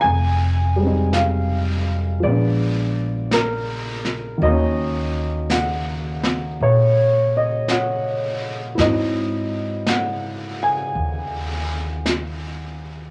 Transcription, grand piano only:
X:1
M:4/4
L:1/16
Q:"Swing" 1/4=55
K:D#phr
V:1 name="Grand piano"
_a4 =f4 =d4 ^A3 z | d4 f4 c2 d2 f3 z | d4 f2 g6 z4 |]
V:2 name="Grand piano"
z2 [=G,_A,=C_E]6 [^E,^G,B,=D]8 | [D,F,A,C]16 | [F,^B,DE]16 |]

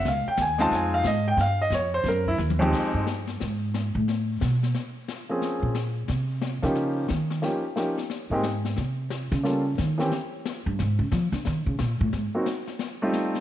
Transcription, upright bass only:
X:1
M:4/4
L:1/8
Q:"Swing" 1/4=179
K:Fm
V:1 name="Upright bass" clef=bass
D,, z E,,2 F,,2 A,,2 | G,,2 F,,2 _G,,2 E,,2 | z G,,3 A,,3 =A,,- | =A,,2 =B,,2 z4 |
z B,,3 C,3 D,- | D,2 E,2 z4 | z A,,3 C,3 D,- | D,2 E,2 z3 G,, |
A,, D, F, =D, E, _D, B,, =A,, | A,, z6 z |]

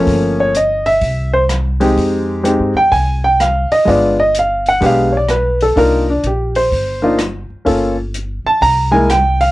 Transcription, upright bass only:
X:1
M:4/4
L:1/8
Q:"Swing" 1/4=126
K:Cm
V:1 name="Upright bass" clef=bass
G,,,4 C,,4 | F,,2- (3F,, G,, =E,, C,,3 z | G,,,4 =B,,,4 | C,,2 B,,,2 G,,,3 z |
G,,,3 z C,,4 |]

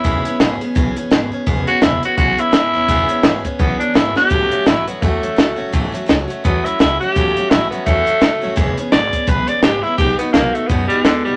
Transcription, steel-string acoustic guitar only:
X:1
M:4/4
L:1/8
Q:"Swing" 1/4=169
K:E
V:1 name="Steel-string acoustic guitar"
[E,B,CG] [B,CG] [E,B,CG] [B,CG] [E,B,CG] [B,CG] [E,B,CG] [B,CG] | [E,B,CG] [B,CG] [E,B,CG] [B,CG] [E,B,CG] [B,CG] [E,B,CG] [B,CG] | [E,B,CG] [B,CG] [E,B,CG] [B,CG] [E,B,CG] [B,CG] [E,B,CG] [B,CG] | [A,,E,F,A,CF] [F,A,CF] [F,A,CF] [F,A,CF] [A,,E,F,A,CF] [F,A,CF] [F,A,CF] [F,A,CF] |
[A,,E,F,A,CF] [F,A,CF] [F,A,CF] [F,A,CF] [A,,E,F,A,CF] [F,A,CF] [F,A,CF] [F,A,CF] | [A,,E,F,A,CF] [F,A,CF] [F,A,CF] [F,A,CF] [A,,E,F,A,CF] [F,A,CF] [F,A,CF] [F,A,CF] | [E,G,B,CG] [B,CG] [G,B,CG] [B,CG] [E,G,B,CG] [B,CG] [G,B,CG] [B,CG] | [B,,G,B,DF] [B,DF] [G,B,DF] [B,DF] [B,,G,B,DF] [B,DF] [G,B,DF] [B,DF] |]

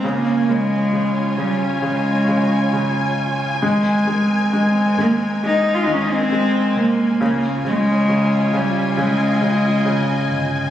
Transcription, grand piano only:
X:1
M:4/4
L:1/8
Q:1/4=67
K:Dblyd
V:1 name="Grand piano" clef=bass
D, D, D, D, D, D, D,2 | A, A, A, A, A, A, A,2 | D, D, D, D, D, D, D,2 |]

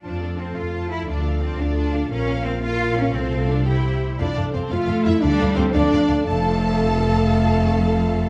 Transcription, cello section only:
X:1
M:6/8
L:1/16
Q:3/8=116
K:F
V:1 name="Cello section"
D4 C2 F4 E2 | D4 C2 D6 | _D4 C2 F4 D2 | C4 D2 E6 |
z6 A,6 | G,6 F,3 z3 | F,,12- | F,,12 |]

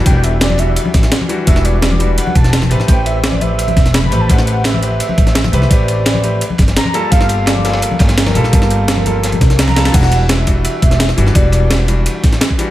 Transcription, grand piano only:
X:1
M:4/4
L:1/8
Q:1/4=170
K:Em
V:1 name="Grand piano"
[E,G,DF]3 [E,G,DF] z3 [E,G,DF] | [E,G,DF]3 [E,G,DF] z3 [A,CGB] | [A,CGB]3 [A,CGB] z3 [A,CGB] | [A,CGB]3 [A,CGB] z3 [A,CGB] |
[A,CGB]3 [A,CGB] z3 [G,_B,=FA] | [G,_B,=FA]3 [G,B,FA] z3 [G,B,FA] | [G,_B,=Fa]3 [G,B,FA] z3 [G,B,FA] | [E,G,DF]3 [E,G,DF] z3 [E,G,DF] |
[E,G,DF]3 [E,G,DF] z3 [E,G,DF] |]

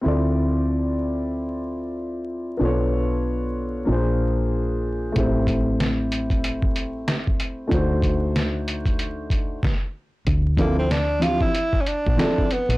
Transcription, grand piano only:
X:1
M:4/4
L:1/8
Q:"Swing 16ths" 1/4=94
K:Dm
V:1 name="Grand piano"
[CEFAd]8 | [=B,DFA^c]4 [_B,DF_A=c]4 | [A,CEGc]8 | [A,D_E^Fc]6 z2 |
z [F,CDEA] z [F,CDEG] z2 [F,CDEA] z |]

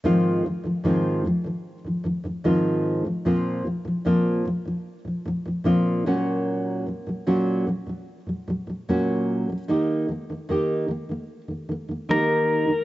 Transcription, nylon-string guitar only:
X:1
M:4/4
L:1/16
Q:1/4=75
K:Ablyd
V:1 name="Nylon-string guitar" clef=bass
[A,,E,F,A,CF]2 [A,,E,F,] [A,,E,F,] [A,,E,F,A,CF]2 [A,,E,F,] [A,,E,F,]2 [A,,E,F,] [A,,E,F,] [A,,E,F,] [A,,E,F,A,CF]3 [A,,E,F,] | [B,,F,B,CF]2 [B,,F,] [B,,F,] [B,,F,B,CF]2 [B,,F,] [B,,F,]2 [B,,F,] [B,,F,] [B,,F,] [B,,F,B,CF]2 [B,,_G,B,_D_G]2- | [B,,_G,B,_D_G]2 [B,,G,] [B,,G,] [B,,G,B,DG]2 [B,,G,] [B,,G,]2 [B,,G,] [B,,G,] [B,,G,] [B,,G,B,DG]3 [B,,G,] | [E,B,EG]2 [E,B,] [E,B,] [E,B,EG]2 [E,B,] [E,B,]2 [E,B,] [E,B,] [E,B,] [E,B,EG]3 [E,B,] |]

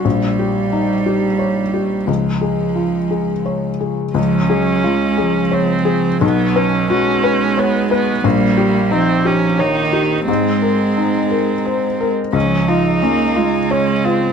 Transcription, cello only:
X:1
M:3/4
L:1/8
Q:1/4=88
K:Db
V:1 name="Cello" clef=bass
=G,6 | F,4- F, z | F, G, A, F,3 | G,2 A,4 |
=G,2 F,2 E,2 | A,4- A, z | F,2 B, A,3 |]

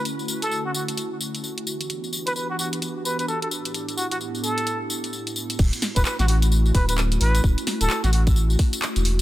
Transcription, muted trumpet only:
X:1
M:4/4
L:1/16
Q:"Swing 16ths" 1/4=130
K:D
V:1 name="Muted trumpet"
z3 A2 F F z8 z | z3 B B F F z3 B B A A z2 | z2 F F z2 A3 z6 z | z3 B B F F z3 B B z2 B2 |
z3 A2 F F z8 z |]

